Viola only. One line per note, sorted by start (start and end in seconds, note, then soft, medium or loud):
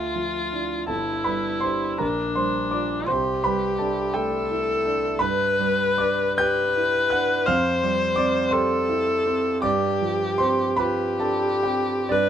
0.00 0.89 F4 medium
0.90 1.98 E4 medium
2.02 3.11 D4 medium
3.10 4.15 G4 medium
4.14 5.22 A4 medium
5.21 6.37 B4 medium
6.37 7.47 B4 medium
7.46 8.54 C5 medium
8.52 9.62 A4 medium
9.64 10.77 G4 medium
10.80 12.13 G4 medium
12.11 12.29 B4 medium